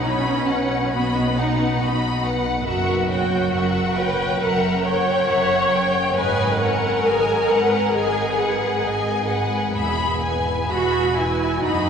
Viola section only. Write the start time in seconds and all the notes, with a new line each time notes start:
0.02 C#4
0.92 B3
1.37 D#4
2.67 F#4
3.97 B4
4.42 A#4
4.86 C#5
6.16 B4
6.60 A#4
7.96 G#4
10.70 F#4
11.17 E4
11.63 D#4